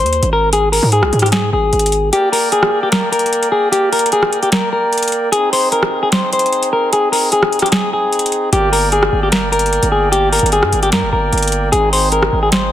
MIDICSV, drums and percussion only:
0, 0, Header, 1, 2, 480
1, 0, Start_track
1, 0, Tempo, 400000
1, 631, Time_signature, 4, 2, 24, 8
1, 15265, End_track
2, 0, Start_track
2, 0, Title_t, "Drums"
2, 71, Note_on_c, 9, 42, 44
2, 152, Note_off_c, 9, 42, 0
2, 152, Note_on_c, 9, 42, 66
2, 271, Note_off_c, 9, 42, 0
2, 271, Note_on_c, 9, 42, 69
2, 391, Note_off_c, 9, 42, 0
2, 632, Note_on_c, 9, 42, 88
2, 752, Note_off_c, 9, 42, 0
2, 875, Note_on_c, 9, 46, 88
2, 995, Note_off_c, 9, 46, 0
2, 1104, Note_on_c, 9, 42, 65
2, 1224, Note_off_c, 9, 42, 0
2, 1232, Note_on_c, 9, 37, 104
2, 1352, Note_off_c, 9, 37, 0
2, 1352, Note_on_c, 9, 42, 41
2, 1432, Note_off_c, 9, 42, 0
2, 1432, Note_on_c, 9, 42, 54
2, 1472, Note_on_c, 9, 37, 72
2, 1512, Note_off_c, 9, 42, 0
2, 1512, Note_on_c, 9, 42, 66
2, 1585, Note_off_c, 9, 42, 0
2, 1585, Note_on_c, 9, 42, 79
2, 1591, Note_on_c, 9, 38, 108
2, 1592, Note_off_c, 9, 37, 0
2, 1705, Note_off_c, 9, 42, 0
2, 1711, Note_off_c, 9, 38, 0
2, 2072, Note_on_c, 9, 42, 47
2, 2152, Note_off_c, 9, 42, 0
2, 2152, Note_on_c, 9, 42, 62
2, 2232, Note_off_c, 9, 42, 0
2, 2232, Note_on_c, 9, 42, 84
2, 2306, Note_off_c, 9, 42, 0
2, 2306, Note_on_c, 9, 42, 77
2, 2426, Note_off_c, 9, 42, 0
2, 2553, Note_on_c, 9, 42, 95
2, 2673, Note_off_c, 9, 42, 0
2, 2796, Note_on_c, 9, 46, 87
2, 2916, Note_off_c, 9, 46, 0
2, 3025, Note_on_c, 9, 42, 65
2, 3145, Note_off_c, 9, 42, 0
2, 3152, Note_on_c, 9, 37, 101
2, 3272, Note_off_c, 9, 37, 0
2, 3504, Note_on_c, 9, 42, 81
2, 3510, Note_on_c, 9, 38, 110
2, 3624, Note_off_c, 9, 42, 0
2, 3630, Note_off_c, 9, 38, 0
2, 3751, Note_on_c, 9, 42, 79
2, 3831, Note_off_c, 9, 42, 0
2, 3831, Note_on_c, 9, 42, 61
2, 3911, Note_off_c, 9, 42, 0
2, 3911, Note_on_c, 9, 42, 44
2, 3992, Note_off_c, 9, 42, 0
2, 3992, Note_on_c, 9, 42, 64
2, 4111, Note_off_c, 9, 42, 0
2, 4111, Note_on_c, 9, 42, 70
2, 4231, Note_off_c, 9, 42, 0
2, 4471, Note_on_c, 9, 42, 91
2, 4591, Note_off_c, 9, 42, 0
2, 4711, Note_on_c, 9, 42, 49
2, 4715, Note_on_c, 9, 46, 84
2, 4790, Note_off_c, 9, 42, 0
2, 4790, Note_on_c, 9, 42, 66
2, 4835, Note_off_c, 9, 46, 0
2, 4871, Note_off_c, 9, 42, 0
2, 4871, Note_on_c, 9, 42, 84
2, 4944, Note_off_c, 9, 42, 0
2, 4944, Note_on_c, 9, 42, 66
2, 5064, Note_off_c, 9, 42, 0
2, 5071, Note_on_c, 9, 37, 102
2, 5191, Note_off_c, 9, 37, 0
2, 5191, Note_on_c, 9, 42, 66
2, 5311, Note_off_c, 9, 42, 0
2, 5311, Note_on_c, 9, 42, 36
2, 5423, Note_off_c, 9, 42, 0
2, 5423, Note_on_c, 9, 42, 79
2, 5430, Note_on_c, 9, 38, 107
2, 5543, Note_off_c, 9, 42, 0
2, 5550, Note_off_c, 9, 38, 0
2, 5911, Note_on_c, 9, 42, 45
2, 5971, Note_off_c, 9, 42, 0
2, 5971, Note_on_c, 9, 42, 58
2, 6031, Note_off_c, 9, 42, 0
2, 6031, Note_on_c, 9, 42, 71
2, 6091, Note_off_c, 9, 42, 0
2, 6091, Note_on_c, 9, 42, 81
2, 6145, Note_off_c, 9, 42, 0
2, 6145, Note_on_c, 9, 42, 74
2, 6265, Note_off_c, 9, 42, 0
2, 6392, Note_on_c, 9, 42, 94
2, 6512, Note_off_c, 9, 42, 0
2, 6634, Note_on_c, 9, 46, 89
2, 6754, Note_off_c, 9, 46, 0
2, 6864, Note_on_c, 9, 42, 68
2, 6984, Note_off_c, 9, 42, 0
2, 6991, Note_on_c, 9, 37, 106
2, 7111, Note_off_c, 9, 37, 0
2, 7343, Note_on_c, 9, 42, 78
2, 7350, Note_on_c, 9, 38, 111
2, 7463, Note_off_c, 9, 42, 0
2, 7470, Note_off_c, 9, 38, 0
2, 7591, Note_on_c, 9, 42, 78
2, 7671, Note_off_c, 9, 42, 0
2, 7671, Note_on_c, 9, 42, 61
2, 7751, Note_off_c, 9, 42, 0
2, 7751, Note_on_c, 9, 42, 45
2, 7830, Note_off_c, 9, 42, 0
2, 7830, Note_on_c, 9, 42, 63
2, 7950, Note_off_c, 9, 42, 0
2, 7951, Note_on_c, 9, 42, 68
2, 8071, Note_off_c, 9, 42, 0
2, 8312, Note_on_c, 9, 42, 92
2, 8432, Note_off_c, 9, 42, 0
2, 8555, Note_on_c, 9, 46, 86
2, 8675, Note_off_c, 9, 46, 0
2, 8784, Note_on_c, 9, 42, 65
2, 8904, Note_off_c, 9, 42, 0
2, 8911, Note_on_c, 9, 37, 105
2, 9030, Note_on_c, 9, 42, 41
2, 9031, Note_off_c, 9, 37, 0
2, 9110, Note_off_c, 9, 42, 0
2, 9110, Note_on_c, 9, 42, 51
2, 9150, Note_on_c, 9, 37, 68
2, 9190, Note_off_c, 9, 42, 0
2, 9190, Note_on_c, 9, 42, 66
2, 9263, Note_off_c, 9, 42, 0
2, 9263, Note_on_c, 9, 42, 81
2, 9270, Note_off_c, 9, 37, 0
2, 9270, Note_on_c, 9, 38, 112
2, 9383, Note_off_c, 9, 42, 0
2, 9390, Note_off_c, 9, 38, 0
2, 9750, Note_on_c, 9, 42, 47
2, 9831, Note_off_c, 9, 42, 0
2, 9831, Note_on_c, 9, 42, 62
2, 9911, Note_off_c, 9, 42, 0
2, 9911, Note_on_c, 9, 42, 81
2, 9985, Note_off_c, 9, 42, 0
2, 9985, Note_on_c, 9, 42, 77
2, 10105, Note_off_c, 9, 42, 0
2, 10232, Note_on_c, 9, 42, 90
2, 10352, Note_off_c, 9, 42, 0
2, 10475, Note_on_c, 9, 46, 86
2, 10595, Note_off_c, 9, 46, 0
2, 10705, Note_on_c, 9, 42, 65
2, 10825, Note_off_c, 9, 42, 0
2, 10831, Note_on_c, 9, 37, 105
2, 10951, Note_off_c, 9, 37, 0
2, 11184, Note_on_c, 9, 42, 79
2, 11190, Note_on_c, 9, 38, 106
2, 11304, Note_off_c, 9, 42, 0
2, 11310, Note_off_c, 9, 38, 0
2, 11431, Note_on_c, 9, 42, 77
2, 11511, Note_off_c, 9, 42, 0
2, 11511, Note_on_c, 9, 42, 59
2, 11591, Note_off_c, 9, 42, 0
2, 11591, Note_on_c, 9, 42, 44
2, 11672, Note_off_c, 9, 42, 0
2, 11672, Note_on_c, 9, 42, 64
2, 11791, Note_off_c, 9, 42, 0
2, 11791, Note_on_c, 9, 42, 70
2, 11911, Note_off_c, 9, 42, 0
2, 12152, Note_on_c, 9, 42, 93
2, 12272, Note_off_c, 9, 42, 0
2, 12391, Note_on_c, 9, 42, 49
2, 12395, Note_on_c, 9, 46, 87
2, 12471, Note_off_c, 9, 42, 0
2, 12471, Note_on_c, 9, 42, 69
2, 12515, Note_off_c, 9, 46, 0
2, 12552, Note_off_c, 9, 42, 0
2, 12552, Note_on_c, 9, 42, 81
2, 12624, Note_off_c, 9, 42, 0
2, 12624, Note_on_c, 9, 42, 68
2, 12744, Note_off_c, 9, 42, 0
2, 12751, Note_on_c, 9, 37, 104
2, 12871, Note_off_c, 9, 37, 0
2, 12871, Note_on_c, 9, 42, 66
2, 12991, Note_off_c, 9, 42, 0
2, 12991, Note_on_c, 9, 42, 38
2, 13104, Note_off_c, 9, 42, 0
2, 13104, Note_on_c, 9, 42, 81
2, 13111, Note_on_c, 9, 38, 113
2, 13224, Note_off_c, 9, 42, 0
2, 13231, Note_off_c, 9, 38, 0
2, 13591, Note_on_c, 9, 42, 48
2, 13651, Note_off_c, 9, 42, 0
2, 13651, Note_on_c, 9, 42, 56
2, 13710, Note_off_c, 9, 42, 0
2, 13710, Note_on_c, 9, 42, 73
2, 13771, Note_off_c, 9, 42, 0
2, 13771, Note_on_c, 9, 42, 84
2, 13825, Note_off_c, 9, 42, 0
2, 13825, Note_on_c, 9, 42, 75
2, 13945, Note_off_c, 9, 42, 0
2, 14072, Note_on_c, 9, 42, 90
2, 14192, Note_off_c, 9, 42, 0
2, 14314, Note_on_c, 9, 46, 87
2, 14434, Note_off_c, 9, 46, 0
2, 14543, Note_on_c, 9, 42, 65
2, 14663, Note_off_c, 9, 42, 0
2, 14670, Note_on_c, 9, 37, 104
2, 14790, Note_off_c, 9, 37, 0
2, 15023, Note_on_c, 9, 42, 78
2, 15030, Note_on_c, 9, 38, 108
2, 15143, Note_off_c, 9, 42, 0
2, 15150, Note_off_c, 9, 38, 0
2, 15265, End_track
0, 0, End_of_file